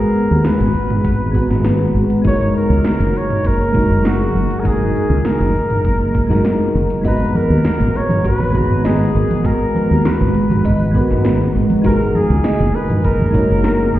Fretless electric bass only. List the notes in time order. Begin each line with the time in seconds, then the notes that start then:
0.31 D#2
0.61 G#1
1.05 G#1
1.50 G#1
1.95 G#1
2.25 F#1
2.70 C#2
3.00 F#1
3.45 F#1
3.90 F#1
4.35 F#1
4.65 F#1
5.10 C#2
5.40 F#1
5.85 F#1
6.30 F#2
6.75 F#1
7.05 G#1
7.50 D#2
7.80 G#1
8.25 G#1
8.70 G#1
9.15 G#1
9.44 G#1
9.91 D#2
10.21 G#1
10.65 G#1
11.11 G#1
11.55 G#1
11.85 F#1
12.30 C#2
12.60 F#1
13.05 F#1
13.50 F#1
13.95 F#1